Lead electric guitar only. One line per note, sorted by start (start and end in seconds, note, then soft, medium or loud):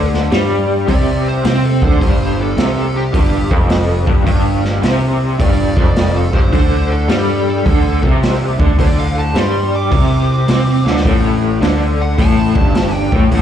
0.00 0.11 D5 medium
0.91 1.26 D5 loud
1.28 1.64 C5 medium
1.65 1.84 A4 medium
1.84 2.38 C5 medium
2.41 2.95 A4 medium
2.97 3.51 G4 loud
5.41 5.77 D5 loud
5.78 6.15 D5 medium
6.16 6.34 A4 medium
6.34 6.89 C5 loud
6.92 7.46 A4 medium
7.50 8.03 A4 loud
8.80 8.98 D5 loud
9.00 9.17 F5 medium
9.18 9.36 A5 medium
9.38 9.74 C6 medium
9.76 11.03 D6 loud
12.02 12.19 F#5 medium
12.22 12.95 A5 loud
12.95 13.30 G5 loud
13.34 13.42 F#5 loud